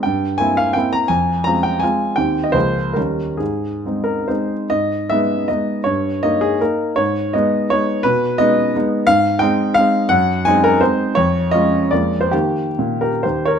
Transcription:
<<
  \new Staff \with { instrumentName = "Grand piano" } { \time 3/4 \key aes \major \tempo 4 = 165 g''4 aes''8 f''8 g''8 bes''8 | aes''4 bes''8 g''8 aes''4 | g''8. ees''16 c''4 bes'4 | aes'4. bes'8 c''4 |
\key gis \minor dis''4 e''4 dis''4 | cis''4 dis''8 gis'8 ais'4 | cis''4 dis''4 cis''4 | b'4 dis''8 r4. |
\key aes \major f''4 g''4 f''4 | ges''4 aes''8 bes'8 c''4 | des''4 ees''4 d''8. c''16 | g'4. <g' bes'>8 <g' c''>8 <bes' des''>8 | }
  \new Staff \with { instrumentName = "Grand piano" } { \time 3/4 \key aes \major g,4 <bes c' e'>4 <bes c' e'>4 | f,4 <aes c' f'>4 <aes c' f'>4 | <ees, ees c' g'>4 <des, f bes aes'>4 <ees, g des' ees'>4 | aes,4 <aes c' ees'>4 <aes c' ees'>4 |
\key gis \minor gis,4 <gis b dis'>4 <gis b dis'>4 | g,4 <ais dis'>4 <ais dis'>4 | gis,4 <gis b dis'>4 <gis b dis'>4 | b,4 <gis b dis'>4 <gis b dis'>4 |
\key aes \major aes,4 <aes c' ees'>4 <aes c' ees'>4 | ges,4 <aes c' ees'>4 <aes c' ees'>4 | f,4 <aes des' f'>4 <f, aes bes f'>4 | <ees bes>4 bes,4 ees,4 | }
>>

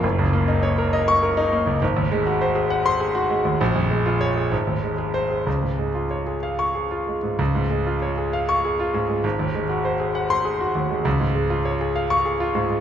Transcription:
\new Staff \with { instrumentName = "Grand piano" } { \time 6/8 \key des \major \tempo 4. = 66 << { r4. r16 des'''8 r8. | r4. r16 c'''8 r8. | r4 des''8 r4 c''8 | r4. r16 des'''8 r8. |
r4. r16 des'''8 r8. | r4. r16 c'''8 r8. | r4. r16 des'''8 r8. | } \\ { ges,,16 des,16 bes16 ees'16 des''16 bes'16 ees''8 bes'16 ees'16 bes16 des,16 | aes,,16 ees,16 aes16 ges'16 c''16 aes'16 ges''8 aes'16 ges'16 aes16 ees,16 | bes,,16 f,16 aes16 f'8 aes'16 aes,,16 ees,16 aes16 aes'8 aes'16 | des,16 aes,16 aes16 f'16 des''16 aes'16 f''8 aes'16 f'16 aes16 aes,16 |
des,16 aes,16 aes16 f'16 des''16 aes'16 f''8 aes'16 f'16 aes,16 aes16 | aes,,16 ees,16 aes16 ges'16 c''16 aes'16 ges''8 aes'16 ges'16 ees,16 aes16 | des,16 aes,16 aes16 f'16 des''16 aes'16 f''8 aes'16 f'16 aes,16 aes16 | } >> }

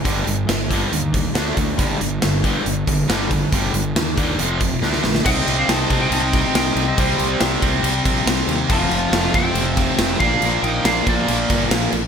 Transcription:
<<
  \new Staff \with { instrumentName = "Lead electric guitar" } { \time 4/4 \key c \dorian \tempo 4 = 139 r1 | r1 | r1 | g''8. f''16 a''8. g''16 a''16 g''8. g''8. ees''16 |
c''4 r2. | a''4. g''2 f''8~ | f''8 g''8 f''8 d''4. r4 | }
  \new Staff \with { instrumentName = "Lead electric guitar" } { \time 4/4 \key c \dorian r1 | r1 | r1 | ees'8. d'16 ees'8. ees'16 ees'16 ees'8. ees'8. c'16 |
g4 r2. | f'4. c'2 d'8~ | d'8 ees'8 d'8 bes4. r4 | }
  \new Staff \with { instrumentName = "Distorted electric guitar" } { \clef bass \time 4/4 \key c \dorian <g, d g>8 <g, d>8 <g, d>8 <g, d g>8 <g, d>8 <g, d>8 <d a d'>8 <d a>8 | <g, d g>8 <g, d>8 <g, d>8 <g, d g>8 <g, d>8 <g, d>8 <g, d g>8 <g, d>8 | <g, d g>8 <g, d>8 <g, d>8 <g, d g>8 <f, c f>8 <f, c>8 <d a d'>8 <d a>8 | <c g c'>4. <c g c'>2~ <c g c'>8 |
<c g c'>4. <c g c'>2~ <c g c'>8 | <f, c f>4. <f, c f>2 <bes, f bes>8~ | <bes, f bes>4 <bes, f bes>2~ <bes, f bes>8 r8 | }
  \new Staff \with { instrumentName = "Overdriven electric guitar" } { \clef bass \time 4/4 \key c \dorian <g, d g>8 <g, d>8 <g, d>8 <g, d g>8 <g, d>8 <g, d>8 <d a d'>8 <d a>8 | <g, d g>8 <g, d>8 <g, d>8 <g, d g>8 <g, d>8 <g, d>8 <g, d g>8 <g, d>8 | <g, d g>8 <g, d>8 <g, d>8 <g, d g>8 <f, c f>8 <f, c>8 <d a d'>8 <d a>8 | <c g c'>1 |
<c g c'>1 | <f, c f>2.~ <f, c f>8 <bes, f bes>8~ | <bes, f bes>2.~ <bes, f bes>8 r8 | }
  \new Staff \with { instrumentName = "Fingered electric bass" } { \clef bass \time 4/4 \key c \dorian g,,8 g,,8 g,,4 ees,4 d,8 d,8 | g,,8 g,,8 g,,4 g,,8 g,,8 g,,4 | g,,8 g,,8 ees,4 f,,4 d,8 bes,,8 | c,8 c,8 c,8 c8 c,4 c,8 c,8 |
c,8 c,8 c,8 c,8 c,8 bes,,8 c,8 ees,8 | f,,8 f,,8 f,,8 f,8 f,,4 f,,8 bes,,8 | bes,,8 bes,,8 bes,,8 bes,,8 bes,,8 g,,8 bes,,8 bes,,8 | }
  \new DrumStaff \with { instrumentName = "Drums" } \drummode { \time 4/4 <hh bd>8 hh8 <hh sn>8 <hh bd>8 hh8 <hh bd>8 <hh sn>8 <hh bd>8 | <hh bd>8 hh8 <hh sn>8 <hh bd>8 hh8 <hh bd>8 <hh sn>8 <hh bd>8 | <hh bd>8 hh8 <hh sn>8 <hh bd>8 hh8 <hh bd>8 sn16 sn16 sn16 sn16 | <cymc bd>8 cymc8 <cymc sn>8 <cymc bd>8 cymc8 <cymc bd>8 <cymc sn>8 cymc8 |
<cymc bd>8 cymc8 <cymc sn>8 <cymc bd>8 cymc8 <cymc bd>8 <cymc sn>8 cymc8 | <cymc bd>8 cymc8 <cymc sn>8 <cymc bd>8 cymc8 <cymc bd>8 <cymc sn>8 <cymc bd>8 | cymc8 cymc8 <cymc sn>8 <cymc bd>8 cymc8 <cymc bd>8 <cymc sn>8 cymc8 | }
>>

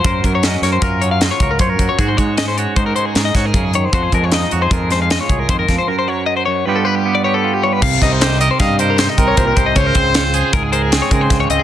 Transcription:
<<
  \new Staff \with { instrumentName = "Clean electric guitar" } { \time 5/4 \key ges \lydian \tempo 4 = 154 c''8 bes'16 des''16 ees''8 des''16 c''16 bes'8 des''16 f''16 ees''16 des''8 bes'16 c''16 bes'8 des''16 | aes'16 c''16 des''8 ees''16 c''16 des''8 c''16 bes'16 c''16 aes'8 ees''16 des''16 bes'8 aes'16 des''16 c''16 | c''8 bes'16 des''16 ees''8 des''16 c''16 bes'8 c''16 f''16 ees''16 des''8 bes'16 c''16 bes'8 c''16 | bes'16 c''16 des''8 ees''16 c''16 des''8 b'16 a'16 b'16 g'8 d''16 des''16 a'8 g'16 des''16 b'16 |
f''8 ees''16 c''16 ees''8 c''16 c''16 f''8 ees''16 bes'16 c''16 ees''8 des''16 c''16 bes'8 ees''16 | des''16 bes'16 c''8 des''16 c''16 aes'8 bes'16 aes'16 c''16 aes'8 des''16 bes'16 c''8 des''16 ees''16 aes'16 | }
  \new Staff \with { instrumentName = "Trumpet" } { \time 5/4 \key ges \lydian r1 r4 | r1 r4 | r1 r4 | r1 r4 |
r4 c''8 ees''8 ees''8 c''8 c''8 bes'4 c''8 | c''2 aes'8 bes'8 aes'4. r8 | }
  \new Staff \with { instrumentName = "Clean electric guitar" } { \time 5/4 \key ges \lydian << { bes'4 des'8 bes'8 f'4 f'8 bes'8 des''4 | ges'4 des'8 ges'8 ees'4 ees'8 ges'16 aes'4~ aes'16 | ges'16 aes'8. ees'8 ges'16 aes'16 f'4 f'8 aes'4. | bes'2 <g b f' g'>4 b8 g'8 f'4 |
r8 ees'8 g'8 bes'4 bes'8 ees'2 | r8 c'8 f'8 aes'4 aes'8 c'4. c'8 | } \\ { <ges, ges>8 ges2 ges4. ges,8 ges8 | aes,8 aes2 aes4. des8 ees8 | f8 aes2 aes4. ees8 f8 | ges,8 ges4 ges,8 g,8 g2 g8 |
c2 g4. c'8 bes,8 c8 | des2 aes,4. aes8 des4 | } >> }
  \new Staff \with { instrumentName = "Fingered electric bass" } { \clef bass \time 5/4 \key ges \lydian ges,8 ges,4 ges,8 ges,4. des,8 ges,8 ges,16 r16 | aes,8 aes,4. aes,8 r8 aes,8 aes,8 ges,4 | f,8 f,4 f,8 f,4. c,8 f,8 f,16 r16 | r1 r4 |
c,8 c,4. g,4. c,8 c,8 c,8 | des,8 des,4. des,4. des8 des,8 des,16 r16 | }
  \new DrumStaff \with { instrumentName = "Drums" } \drummode { \time 5/4 <hh bd>8 <hh bd>8 <hh sn>8 <hh sn>8 <hh bd>8 hh8 <hh sn>8 <hh bd>8 <hh bd>8 <hh bd>8 | <hh bd>8 <hh bd>8 <hh sn>8 hh8 <hh bd>8 hh8 <hh sn>8 <hh bd sn>8 <hh bd>8 hh8 | <hh bd>8 <hh bd>8 <hh sn>8 hh8 <hh bd>8 <hh sn>8 <hh sn>8 <hh bd>8 <hh bd>8 <hh bd sn>8 | r4 r4 r4 r4 r4 |
<cymc bd>8 <hh bd sn>8 <hh sn>8 hh8 <hh bd sn>8 hh8 <hh sn>8 <hh bd>8 <hh bd>8 <hh bd>8 | <hh bd>8 <hh bd>8 <hh sn>8 hh8 <hh bd>8 hh8 <hh sn>8 <hh bd>8 <hh bd sn>8 hh8 | }
>>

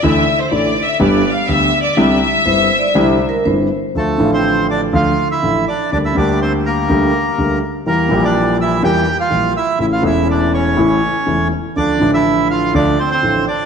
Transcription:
<<
  \new Staff \with { instrumentName = "Violin section" } { \time 4/4 \key c \mixolydian \tempo 4 = 123 e''8. c''16 \tuplet 3/2 { d''4 e''8 d''4 f''8 e''4 d''8 } | e''2. r4 | \key d \minor r1 | r1 |
r1 | r1 | r1 | }
  \new Staff \with { instrumentName = "Vibraphone" } { \time 4/4 \key c \mixolydian r1 | r4 \tuplet 3/2 { c''4 d''8 c''4 bes'8 } c''4 | \key d \minor r1 | r1 |
r1 | r1 | r1 | }
  \new Staff \with { instrumentName = "Bandoneon" } { \time 4/4 \key c \mixolydian r1 | r1 | \key d \minor <a a'>8. <c' c''>8. <d' d''>8 <f' f''>8. <e' e''>8. <d' d''>8 | <d' d''>16 <e' e''>16 <d' d''>8 <c' c''>8 <bes bes'>2 r8 |
<bes bes'>8. <d' d''>8. <e' e''>8 <g' g''>8. <f' f''>8. <e' e''>8 | <e' e''>16 <f' f''>16 <e' e''>8 <d' d''>8 <cis' cis''>2 r8 | <d' d''>8. <e' e''>8. <f' f''>8 <d' d''>8 <c' c''>16 <c' c''>8. <d' d''>8 | }
  \new Staff \with { instrumentName = "Grand piano" } { \clef bass \time 4/4 \key c \mixolydian <d, d e a e'>8 r8 <a,, a, d e a e'>8 r8 <g,, g, d g b g'>8 r8 <d, d g b g'>8 r8 | <c, c d g c' e'>8 r8 <g,, g, d g c' e'>8 r8 <c, c d g c' e'>8 r8 <g,, g, d g c' e'>8 r8 | \key d \minor <d, d f a f'>8 <a,, a, d f a f'>4. <d, d f a f'>8 r8 <a,, a, d f a f'>8 r8 | <d, d g bes g'>8 <d, d g bes g'>4. <d, d g bes g'>8 r8 <d, d g bes g'>8 r8 |
<e, e g bes g'>8 <bes,, bes, e g bes g'>4. <e, e g bes g'>8 r8 <bes,, bes, e g bes g'>8 r8 | <a,, a, cis e a e'>8 <e,, e, cis e a e'>4. <a,, a, cis e a e'>8 r8 <e,, e, cis e a e'>8 r8 | <d, d f a f'>8 <a,, a, d f a d'>4. <d, d f a f'>8 r8 <a,, a, d f a f'>8 r8 | }
>>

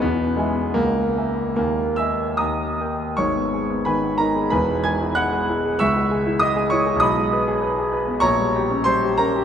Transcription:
\new Staff \with { instrumentName = "Grand piano" } { \time 2/4 \key gis \minor \tempo 4 = 94 << { b8 gis8 ais4 | ais8 <e'' e'''>8 <dis'' ais'' dis'''>4 | <cis'' cis'''>4 <b' gis'' b''>8 <ais' ais''>8 | <b' gis'' b''>8 <gis'' gis'''>8 <fis'' fis'''>4 |
<e'' cis''' e'''>4 <dis'' dis'''>8 <cis'' cis'''>8 | <dis'' b'' dis'''>8 r4. | <des'' bes'' des'''>4 <bis' bis''>8 <bes' bes''>8 | } \\ { e,8 <gis' e'' gis''>8 cis,8 <ais' e'' gis''>8 | dis,8 <ais' dis'' gis''>8 dis,8 <ais' dis'' g''>8 | <gis,, gis,>16 b16 gis'16 b16 dis16 b16 dis'16 gis'16 | <e,, e,>16 gis16 gis'16 e'16 gis16 gis'16 e'16 gis'16 |
cis,16 gis16 gis'16 e'16 gis16 gis'16 e'16 gis'16 | b,,16 gis16 b'16 gis'16 b'16 gis'16 b'16 b16 | bes,,16 g16 g'16 des'16 g16 g'16 des'16 g'16 | } >> }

